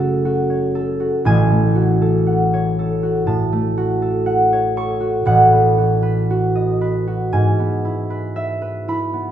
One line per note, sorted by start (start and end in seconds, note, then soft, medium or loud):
0.00 1.05 F#1 medium
0.00 1.06 F#2 medium
0.00 1.29 C#3 medium
0.00 1.50 A3 medium
0.00 0.24 F#4 medium
0.00 0.74 A4 medium
0.00 0.49 C#5 medium
0.00 2.26 F#5 medium
0.00 1.06 A5 loud
0.25 0.99 F#4 medium
0.50 2.52 C#5 medium
0.75 2.00 A4 medium
1.00 1.74 F#4 medium
1.25 5.15 A1 medium
1.25 3.26 A2 medium
1.25 4.68 G#5 loud
1.51 3.51 A3 medium
1.75 3.02 F#4 medium
2.02 2.78 A4 medium
2.27 4.25 F#5 medium
2.54 4.51 C#5 medium
2.79 4.01 A4 medium
3.03 3.76 F#4 medium
3.27 5.25 A2 medium
3.27 7.17 A5 medium
3.53 7.39 A3 medium
3.78 4.99 F#4 medium
4.02 4.76 A4 medium
4.26 5.25 F#5 medium
4.53 5.32 C#5 medium
4.77 7.39 A4 medium
4.77 5.32 C#6 loud
5.00 5.77 F#4 medium
5.25 7.38 A1 medium
5.25 7.38 A2 medium
5.25 7.38 F#5 loud
5.52 7.58 B3 medium
5.78 6.29 F#4 medium
6.02 6.80 B4 medium
6.30 7.06 F#4 medium
6.55 7.38 D#5 medium
6.81 8.09 B4 medium
7.07 7.38 F#4 medium
7.33 9.31 G#2 medium
7.33 9.31 G#5 loud
7.59 9.12 B3 medium
7.85 8.87 E4 medium
8.10 8.60 B4 medium
8.36 9.31 E5 medium
8.62 9.31 B4 medium
8.88 9.31 E4 medium
8.88 9.31 B5 loud
9.13 9.31 B3 medium